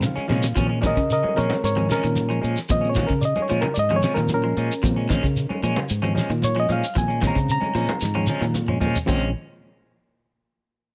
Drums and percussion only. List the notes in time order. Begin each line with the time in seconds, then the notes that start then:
0.02 closed hi-hat, high conga, shekere
0.17 snare, closed hi-hat
0.29 snare, high conga, shekere
0.42 snare, shekere
0.57 kick, closed hi-hat, high conga, low conga, shekere
0.83 kick, snare, closed hi-hat, high conga, shekere
0.97 kick, snare, closed hi-hat, shekere
1.10 closed hi-hat, high conga, shekere
1.24 high conga
1.37 closed hi-hat, shekere
1.50 snare, high conga
1.64 snare, closed hi-hat, high conga, shekere
1.76 closed hi-hat, low conga
1.91 snare, closed hi-hat, shekere
2.04 shekere
2.16 closed hi-hat, high conga, shekere
2.31 closed hi-hat
2.44 closed hi-hat, shekere
2.57 snare, shekere
2.69 kick, closed hi-hat, high conga, low conga, shekere
2.85 closed hi-hat
2.95 kick, snare, closed hi-hat, high conga, shekere
3.08 kick, snare, closed hi-hat, shekere
3.22 closed hi-hat, high conga, shekere
3.36 closed hi-hat, high conga
3.49 closed hi-hat, shekere
3.62 closed hi-hat, high conga
3.75 closed hi-hat, high conga, shekere
3.90 closed hi-hat, low conga
4.02 snare, closed hi-hat, shekere
4.16 closed hi-hat, high conga, low conga, shekere
4.28 closed hi-hat, high conga, shekere
4.57 closed hi-hat, shekere
4.72 shekere
4.83 kick, closed hi-hat, high conga, low conga, shekere
5.10 kick, snare, closed hi-hat, high conga, shekere
5.24 kick, snare, closed hi-hat, shekere
5.36 closed hi-hat, high conga, shekere
5.50 high conga
5.63 closed hi-hat, shekere
5.76 high conga
5.89 closed hi-hat, high conga, shekere
6.02 closed hi-hat, low conga
6.17 snare, closed hi-hat, shekere
6.31 shekere
6.42 closed hi-hat, high conga, shekere
6.57 closed hi-hat
6.69 closed hi-hat, high conga, shekere
6.84 shekere
6.96 kick, closed hi-hat, high conga, low conga, shekere
7.10 closed hi-hat
7.21 kick, snare, closed hi-hat, high conga, shekere
7.36 kick, closed hi-hat, shekere
7.49 closed hi-hat, high conga, shekere
7.62 closed hi-hat, high conga
7.75 open hi-hat, shekere
7.89 closed hi-hat, high conga
8.01 snare, high conga, shekere
8.15 low conga
8.27 high tom, shekere
8.41 high conga, low conga, shekere
8.54 mid tom, high conga, shekere
8.68 mid tom
8.81 floor tom, high conga, shekere
8.96 floor tom, shekere
9.08 kick, crash, low conga, shekere